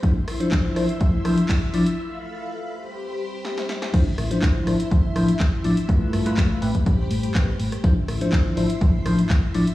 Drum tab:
CC |----------------|----------------|x---------------|----------------|
HH |x-oxx-oxx-oxx-ox|----------------|x-oxx-oxx-oxx-ox|x-oxx-oxx-oxx-ox|
CP |----x-------x---|----------------|----x-------x---|----x-------x---|
SD |--r---r---r-----|------------oooo|--r---r---r-----|--r------------r|
BD |o---o---o---o---|----------------|o---o---o---o---|o---o--oo---o---|

CC |----------------|
HH |x-oxx-oxx-oxx-ox|
CP |----x-------x---|
SD |--r-------r-----|
BD |o---o---o---o---|